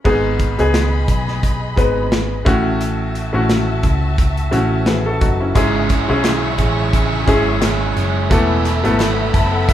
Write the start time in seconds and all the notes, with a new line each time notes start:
0.04 G#1 G#2 G#3 B3 D#4 G#4 D#5 B5, kick, crash
0.39 kick, closed hi-hat
0.58 C#2 G#3 B3 D#4 G#4, closed hi-hat
0.74 snare, closed hi-hat
1.08 B1, kick, closed hi-hat
1.28 snare
1.43 kick, closed hi-hat
1.76 G#1 G#3 B3 D#4 B4, kick, closed hi-hat
2.12 snare, closed hi-hat
2.45 A1 A2 A3 C#4 E4 F#4 E5 A5, kick, closed hi-hat
2.81 closed hi-hat
3.15 closed hi-hat
3.33 A1 A3 C#4 E4 F#4
3.50 snare, closed hi-hat
3.83 C#2, kick, closed hi-hat
4.18 kick, closed hi-hat
4.37 closed hi-hat
4.51 A1 A3 C#4 E4 F#4, closed hi-hat
4.86 G#4 B4, snare, closed hi-hat
5.06 F#4 A4
5.21 F#1 D#4 F#4, kick, closed hi-hat
5.40 C#4 E4
5.55 G#1 G#2 C#3 G#3 C#4 E4 G#4 E5 C#6, kick, closed hi-hat
5.89 G#3 C#4 E4 G#4, kick, clap, closed hi-hat
6.08 B1 G#3 C#4 E4 G#4
6.24 G#3 C#4 E4 G#4, snare, clap, closed hi-hat
6.58 A1 G#3 C#4 E4 G#4, kick, closed hi-hat
6.93 G#2 C#3 G#3 C#4 E4 G#4, kick, closed hi-hat
7.27 G#1 G#3 C#4 E4 G#4, kick, closed hi-hat
7.61 G#3 C#4 E4 G#4, snare, clap, closed hi-hat
7.96 F#1 G#3 C#4 E4 G#4, closed hi-hat
8.30 E1 E3 A3 B3 E4 A4 E5 B5, kick, closed hi-hat
8.65 B3 E4 A4, clap, closed hi-hat
8.84 G#1 A3 B3 E4 A4, closed hi-hat
8.99 E3 B3 E4 A4, snare, clap, closed hi-hat
9.33 F#1 B3 E4 A4 A5, kick, closed hi-hat
9.53 F#5
9.68 E3 B3 E4 A4 E5, kick, closed hi-hat